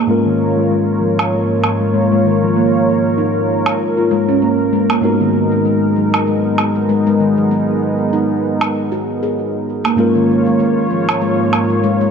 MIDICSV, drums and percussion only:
0, 0, Header, 1, 2, 480
1, 0, Start_track
1, 0, Tempo, 618557
1, 67, Time_signature, 4, 2, 24, 8
1, 9395, End_track
2, 0, Start_track
2, 0, Title_t, "Drums"
2, 925, Note_on_c, 9, 77, 64
2, 1002, Note_off_c, 9, 77, 0
2, 1269, Note_on_c, 9, 77, 49
2, 1347, Note_off_c, 9, 77, 0
2, 2841, Note_on_c, 9, 77, 68
2, 2919, Note_off_c, 9, 77, 0
2, 3801, Note_on_c, 9, 77, 69
2, 3879, Note_off_c, 9, 77, 0
2, 4763, Note_on_c, 9, 77, 66
2, 4841, Note_off_c, 9, 77, 0
2, 5107, Note_on_c, 9, 77, 54
2, 5185, Note_off_c, 9, 77, 0
2, 6683, Note_on_c, 9, 77, 77
2, 6761, Note_off_c, 9, 77, 0
2, 7643, Note_on_c, 9, 77, 75
2, 7721, Note_off_c, 9, 77, 0
2, 8604, Note_on_c, 9, 77, 77
2, 8681, Note_off_c, 9, 77, 0
2, 8946, Note_on_c, 9, 77, 60
2, 9024, Note_off_c, 9, 77, 0
2, 9395, End_track
0, 0, End_of_file